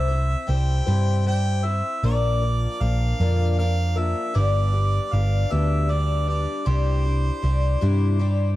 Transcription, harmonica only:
Already playing: E5
0.50 G5
1.27 G5
1.65 E5
2.05 D5
2.82 F5
3.59 F5
3.98 E5
4.36 D5
5.13 F5
5.52 E5
5.90 D5
6.29 D5
6.67 C5

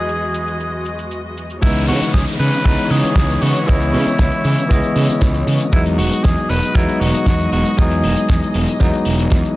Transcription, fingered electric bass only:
1.63 C#2
1.88 C#3
2.01 muted fingered electric bass stroke
2.14 C#2
2.39 C#3
2.65 C#2
2.91 C#3
3.04 muted fingered electric bass stroke
3.16 C#2
3.42 C#3
3.69 C#2
3.93 C#3
4.06 muted fingered electric bass stroke
4.19 C#2
4.45 C#3
4.71 C#2
4.96 C#3
5.09 muted fingered electric bass stroke
5.22 C#2
5.47 C#3
5.73 E2
5.99 E1
6.12 muted fingered electric bass stroke
6.25 E2
6.50 E1
6.75 E2
7.01 E1
7.14 muted fingered electric bass stroke
7.26 E2
7.52 E1
7.79 E2
8.04 E1
8.17 muted fingered electric bass stroke
8.30 E2
8.55 E1
8.81 E2
9.06 E1
9.32 E2

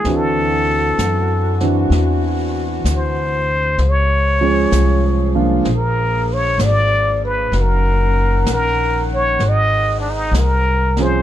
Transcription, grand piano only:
0.06 E3 C4 D4 F#4
1.61 E3 C4 D4 F#4
4.41 F3 G#3 C#4 G#4
5.35 F3 A#3 D4 F4
10.99 F3 C4 C#4 G#4

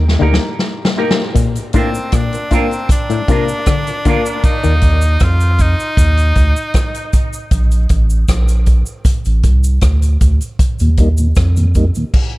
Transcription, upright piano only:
0.20 A#3 D#4 G4 A#4
0.97 A#3 D#4 G4 A#4
1.17 G4 A#4
1.74 A#3 D4 F4 A#4
2.33 F4 A#4
2.50 A#3 D4 F4 A#4
3.28 A#3 D4 F4 A#4
3.87 F4 A#4
4.05 A#3 D4 F4 A#4

